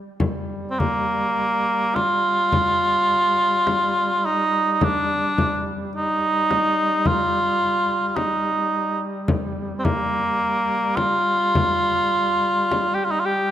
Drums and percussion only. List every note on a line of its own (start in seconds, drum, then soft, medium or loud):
0.20 frame drum medium
0.80 frame drum soft
1.96 frame drum soft
2.52 frame drum medium
3.67 frame drum soft
4.81 frame drum medium
5.38 frame drum medium
6.51 frame drum soft
7.05 frame drum medium
8.16 frame drum soft
9.28 frame drum medium
9.85 frame drum medium
10.97 frame drum soft
11.55 frame drum medium
12.71 frame drum soft